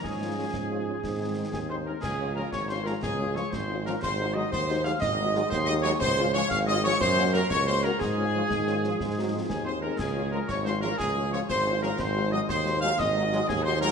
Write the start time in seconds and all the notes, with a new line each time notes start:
0.03 G#2 F3 C#4 G#4 G#5, concert bass drum, snare
0.21 G#3 C#4 F4
0.37 G#3 C#4 F4
0.53 G#2, concert bass drum, snare
0.70 G#3 C#4 F4
0.87 G#3 C#4 F4
1.02 G#2 D#3 C4, concert bass drum, snare
1.20 G#3 C4 D#4
1.37 G#3 C4 D#4
1.51 D#2 G#4 G#5, concert bass drum, snare
1.69 G#3 C4 D#4 C5 C6
1.85 G#3 C4 D#4 A#4 A#5
2.01 C#2 G#4 G#5, concert bass drum, snare, crash
2.19 G#3 C#4 F4
2.35 F3 G#3 C#4 F4 A#4 A#5
2.52 G#1 C#5 C#6, concert bass drum, snare
2.69 G#3 C#4 F4 C5 C6, snare
2.84 F3 G#3 C#4 F4 A#4 A#5, snare
3.02 C#2 G#4 G#5, concert bass drum, snare
3.19 G#3 C#4 F4
3.35 F3 G#3 C#4 F4 C#5 C#6, snare
3.50 G#1 C5 C6, concert bass drum, snare
3.69 G#3 C#4 F4
3.84 F3 G#3 C#4 F4 A#4 A#5, snare
4.00 G#1 C5 C6, concert bass drum, snare, crash
4.19 G#3 D#4 F#4
4.34 F#3 G#3 D#4 F#4 D#5 D#6
4.51 D#2 C5 C6, concert bass drum, snare
4.69 G#3 D#4 F#4, snare
4.85 F#3 G#3 D#4 F#4 F5 F6, snare
5.00 G#1 D#5 D#6, concert bass drum, snare
5.19 G#3 D#4 F#4
5.33 F#3 G#3 D#4 F#4, snare
5.50 D#2 C5 C6, concert bass drum, snare
5.66 G#3 D#4 F#4 D#5 D#6
5.81 F#3 G#3 D#4 F#4 C#5 C#6, snare
6.00 C#2 C5 C6, concert bass drum, snare, crash
6.18 G#3 C#4 F4
6.34 F3 G#3 C#4 F4 C#5 C#6
6.49 G#1 F5 F6, concert bass drum, snare
6.66 G#3 C#4 F4 D#5 D#6, snare
6.83 F3 G#3 C#4 F4 C#5 C#6, snare
7.00 F#2 C5 C6, concert bass drum, snare
7.17 A#3 C#4 F#4
7.34 F#3 A#3 C#4 F#4 A#4 A#5, snare
7.50 C#2 C#5 C#6, concert bass drum, snare
7.67 A#3 C#4 F#4 C5 C6
7.83 F#3 A#3 C#4 F#4 A#4 A#5, snare
7.99 G#2 G#4 G#5, concert bass drum, snare, crash
8.17 G#3 C#4 F4
8.34 F3 G#3 C#4 F4
8.50 G#2 D#3, concert bass drum, snare
8.67 G#3 C#4 F4, snare
8.83 F3 G#3 C#4 F4, snare
8.99 G#2 G#3, concert bass drum, snare
9.17 F#3 G#3 C4 D#4
9.32 F3 G#3 C4 D#4
9.49 D#2 D#3 G#4 G#5, concert bass drum, snare
9.65 G#3 C4 D#4 C5 C6
9.81 G#3 C4 D#4 A#4 A#5
9.98 C#2 G#4 G#5, concert bass drum, snare, crash
10.15 G#3 C#4 F4
10.31 F3 G#3 C#4 F4 A#4 A#5
10.48 G#1 C#5 C#6, concert bass drum, snare
10.65 G#3 C#4 F4 C5 C6, snare
10.82 F3 G#3 C#4 F4 A#4 A#5, snare
10.97 C#2 G#4 G#5, concert bass drum, snare
11.17 G#3 C#4 F4
11.31 F3 G#3 C#4 F4 C#5 C#6, snare
11.49 G#1 C5 C6, concert bass drum, snare
11.65 G#3 C#4 F4
11.82 F3 G#3 C#4 F4 A#4 A#5, snare
11.99 G#1 C5 C6, concert bass drum, snare, crash
12.16 G#3 D#4 F#4
12.32 F#3 G#3 D#4 F#4 D#5 D#6
12.49 D#2 C5 C6, concert bass drum, snare
12.66 G#3 D#4 F#4, snare
12.81 F#3 G#3 D#4 F#4 F5 F6, snare
12.98 G#1 D#5 D#6, concert bass drum, snare
13.16 G#3 D#4 F#4
13.32 F#3 G#3 D#4 F#4, snare
13.48 D#2 G#4 G#5, concert bass drum, snare
13.63 G#3 D#4 F#4 C5 C6
13.81 F#3 G#3 D#4 F#4 A#4 A#5, snare